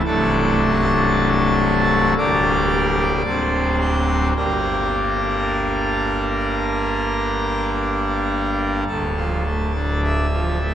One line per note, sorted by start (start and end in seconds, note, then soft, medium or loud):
0.06 2.14 C1 medium
0.06 2.14 C2 medium
0.06 2.14 F#3 soft
0.06 2.14 A3 soft
0.06 2.14 D4 medium
0.06 2.14 A4 loud
2.18 3.22 D1 medium
2.18 3.22 D2 medium
2.18 3.22 G3 soft
2.18 3.22 A#3 soft
2.18 3.22 D4 soft
2.18 3.76 D5 loud
3.25 4.33 D1 medium
3.25 4.33 D2 medium
3.25 4.33 F#3 soft
3.25 4.33 C4 soft
3.25 4.33 D4 soft
3.80 4.28 C5 medium
4.36 8.84 G1 soft
4.36 8.84 G2 soft
4.36 8.84 G3 soft
4.36 8.84 A#3 soft
4.36 8.84 D4 soft
4.36 7.71 A#4 medium
8.88 10.74 D1 medium
8.88 10.74 D2 medium
8.88 10.01 A4 medium
9.17 9.43 F3 soft
9.45 9.72 A3 soft
9.75 10.26 D4 soft
10.04 10.74 E5 medium
10.33 10.57 F3 soft
10.60 10.74 A3 soft